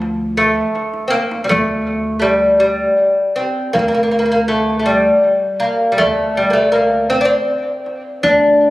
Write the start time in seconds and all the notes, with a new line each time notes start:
Already playing: D2 F3
0.02 tombak tek
0.21 tombak ka
0.37 A3, tombak tek
0.75 tombak tek
0.93 tombak ka
1.08 A#3 C4
1.13 tombak tek
1.31 tombak ka
1.44 G3
1.49 D2 A3, tombak dum
2.07 tombak ka
2.20 G3 A3
2.26 tombak tek
2.45 tombak ka
2.60 G3, tombak tek
3.00 tombak ka
3.36 C4, tombak tek
3.73 D2 A#3, tombak dum
3.79 A#3
3.88 A#3
3.95 A#3
4.03 A#3
4.11 A#3
4.19 A#3
4.25 A#3
4.32 A#3
4.48 A3, tombak tek
4.79 A3
4.86 G3, tombak tek
5.25 tombak ka
5.60 A#3, tombak tek
5.92 G3
5.98 D2 A3, tombak dum
6.37 G3
6.50 A3 A#3
6.72 A#3, tombak tek
6.94 tombak ka
7.10 C4, tombak tek
7.21 D4
7.25 C4
7.49 tombak ka
7.86 tombak tek
8.23 D2 D4, tombak dum